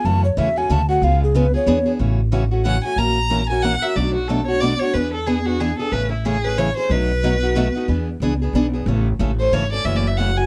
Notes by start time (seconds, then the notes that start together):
0.05 F#2 C#3 E3 A3 C#4 F#4 A5
0.25 C#5
0.37 E2 C#3 E3 A3 C#4 F#4 E5
0.56 A3 C#4 F#4 G#5
0.69 D2 C#3 E3 A3 C#4 F#4 A5
0.89 A3 C#4 F#4 F#5
1.02 C#2 C#3 G#3 B3 F4 G#4 F5
1.24 G#4
1.35 C#3 G#3 B3 F4 G#4 B4
1.54 B3 F4 G#4 C#5
1.66 E2 E3 B3 D4 G#4
1.86 B3 D4 G#4
1.99 A1 C#3 E3 A3 C#4 F#4
2.32 C#3 E3 A3 C#4 F#4
2.51 A3 C#4 F#4
2.65 C#3 E3 A3 C#4 F#4 F#5
2.84 A3 C#4 F#4 G#5
2.96 A#1 E3 A#3 C#4 F#4 A#4 A#5
3.30 E3 A#3 C#4 F#4 A#4
3.50 C#4 F#4 A#4 G#5
3.62 E3 A#3 C#4 F#4 A#4 F#5
3.82 C#4 F#4 A#4 E5
3.96 B1 B2 F#3 A3 D4 F#4 D5
4.15 F#4
4.28 B2 F#3 A3 D4 F#4 A4
4.47 A3 D4 F#4 C#5
4.60 B2 F#3 A3 D4 F#4 D5
4.79 D4 F#4 C#5
4.83 A3
4.94 E2 E3 B3 D4 G#4 B4
5.13 A4
5.27 E3 B3 D4 G#4
5.46 B3 D4 F#4 G#4
5.60 E3 B3 D4 G#4
5.78 B3 D4 G#4 A4
5.92 A1 C#3 E3 A3 C#4 G#4 B4
6.12 E4
6.25 C#3 E3 A3 C#4 G#4
6.44 A3 C#4 G#4 B4
6.58 C#3 E3 A3 C#4 G#4 C#5
6.77 A3 C#4 G#4 C5
6.89 B1 B2 F#3 A3 D#4 F#4 B4
7.23 B2 F#3 A3 D#4 F#4
7.43 A3 D#4 F#4
7.55 B2 F#3 A3 D#4 F#4
7.75 A3 D#4 F#4
7.88 E2 E3 B3 D4 G#4
8.20 C#2 E3 B3 D4 G#4
8.42 B3 D4 G#4
8.53 B1 E3 B3 D4 G#4
8.74 B3 D4 G#4
8.86 A1 C#3 E3 A3 C#4 A4
9.19 A1 C#3 E3 A3 C#4 A4
9.39 A3 C#4 A4 C5
9.52 G#1 C#3 E3 A3 C#4 A4 C#5
9.72 A3 C#4 A4 D5
9.85 F#1 C#3 E3 A3 C#4 F#4 E5
9.96 D5
10.07 E5
10.18 C#3 E3 A3 C#4 F#4 F#5
10.37 A3 C#4 F#4 G#5